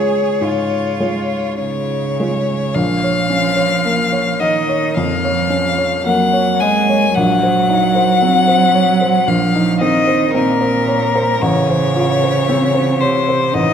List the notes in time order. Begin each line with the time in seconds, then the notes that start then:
Already playing: C#2 G#3 F4 G#4 C#5
0.41 G#2 F4
1.00 G#3 F4 C#5
1.60 C#3 C#5
2.20 G#3 F4 C#5
2.75 A#1 F3 F5
3.04 C#5
3.30 C#4
3.56 C#5
3.85 A#3
4.12 C#5
4.39 D#3 D#5
4.69 C#5
4.95 F2 F3 F5
5.24 C#5
5.50 C#4
5.78 C#5
6.06 F#3 A#3 F#5
6.33 C#5
6.60 G#3 D#5 G#5
6.89 C#5
7.14 A#1 F#3 F#5
7.43 C5
7.70 D#4
7.95 C5
8.22 C4
8.48 C5
8.75 C#5
9.01 C5
9.27 A#1 F3 F5
9.55 D#4
9.81 D#3 C4 D#5
10.07 C5
10.34 A#2 C4 A#4
10.61 C5
10.88 C#5
11.15 C5
11.42 A1 C#3 C#5
11.70 C5
11.96 F4
12.24 C5
12.49 C4
12.75 C5
13.00 C3 C5 C#5
13.29 C5
13.54 A1 D#3 D#5